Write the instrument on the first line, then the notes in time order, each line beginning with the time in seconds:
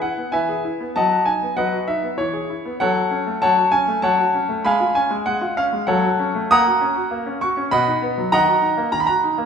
grand piano
0.02 E4 F#5
0.18 B3
0.32 E3 B4 E5 G#5
0.49 G#4
0.65 E4
0.80 B3
0.96 F#3 D#5 F#5 A5
1.12 F#4
1.26 D#4 G#5
1.42 B3
1.57 F#3 B4 D#5 F#5
1.72 F#4
1.88 D#4 E5
2.03 B3
2.18 E3 C#5
2.33 G#4
2.50 E4
2.65 B3
2.80 F#3 A4 C#5 F#5
2.96 F#4
3.11 C#4
3.27 A3
3.42 F#3 C#5 F#5 A5
3.57 F#4
3.72 C#4 G#5
3.88 A3
4.02 F#3 C#5 F#5 A5
4.19 F#4
4.34 C#4
4.49 A3
4.64 G#3 F5 G#5 B5
4.80 F4
4.95 C#4 G#5
5.11 G#3
5.26 G#3 F#5
5.41 F4
5.57 C#4 F5
5.73 G#3
5.87 F#3 A4 C#5 F#5
6.04 F#4
6.19 C#4
6.35 A3
6.51 A#3 F#5 A#5 D#6
6.66 F#4
6.81 C#4
6.96 F#4
7.11 A#3
7.26 C#4
7.41 F#4 C#6
7.57 C#4
7.71 B2 D#5 F#5 B5
7.87 D#4
8.02 B3
8.18 F#3
8.32 D#3 D#5 F#5 A#5
8.47 F#4
8.62 D#4
8.77 A#3
8.92 D#3 A#5
9.00 B5
9.07 F#4 A#5
9.24 D#4
9.38 A#3